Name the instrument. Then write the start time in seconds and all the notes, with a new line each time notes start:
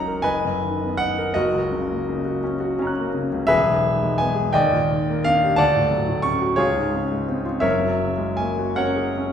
grand piano
Already playing: F#1 C#2 F#3 C#4 D#4 C#5 D#5 F#5 A#5
0.08 A#4
0.22 F#1 B4 D#5 G#5
0.45 F#2
0.64 D#3
0.84 B3
0.97 D#4 F#5
1.18 A#4
1.34 F#1 F#4 A#4 D#5
1.54 C#2
1.72 C#3
1.91 A#3
2.09 C#3
2.25 F#4
2.44 C#4
2.60 F#4
2.79 C#4 C#5 A#5
2.85 A#5 F#6
2.98 A#3
3.14 C#3
3.32 C#2
3.47 E1 G#4 B4 E5
3.68 B1
3.86 D#3
4.02 G#3
4.18 B3 G#5
4.35 G#4
4.53 D#2 D5 D#5 G5
4.72 A#2
4.91 D#3
5.10 A#3
5.24 D4 F5
5.43 G4
5.56 D2 D5 F#5 A5
5.76 A2
5.91 F#3
6.08 A2
6.22 C#4 C#6
6.41 F#4
6.56 C#2 F4 G#4 C#5
6.75 G#2
6.95 C#3
7.11 G#3
7.28 C4
7.45 F4
7.60 F#1 F#2 A#4 C#5 E5
7.80 F#3
7.99 C#3
8.18 G#3
8.37 A#3 G#5
8.59 F#4
8.76 C#4 A#4 C#5 F#5
8.96 G#4
9.18 C#4